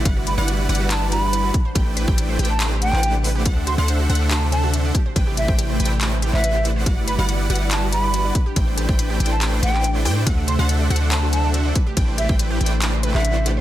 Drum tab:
RD |--------------------------------|--------------------------------|--------------------------------|--------------------------------|
HH |x---x---x---xx--x---x---x---x---|x---x---x---xx--x---x---x---o---|x---x---x---xx--x---x---x---x---|x---x---x---xx--x---x---x---x---|
CP |----------------x---------------|----------------x-----x---------|----------------x---------------|----------------x-----x---------|
BD |o---------------------------o---|o-----o-------------------------|o---------------------------o---|o-----o-------------------------|

RD |--------------------------------|--------------------------------|x-------------------------------|x-------------------------------|
HH |x---x---x---xx--x---x---x---x---|x---x---x---xx--x---x---x---o---|x---x---x---xx--x---x---x---x---|x---x---x---xx--x---x---x---x---|
CP |----------------x---------------|----------------x-----x---------|----------------x---------------|----------------x-----x---------|
BD |o---------------------------o---|o-----o-------------------------|o---------------------------o---|o-----o-------------------------|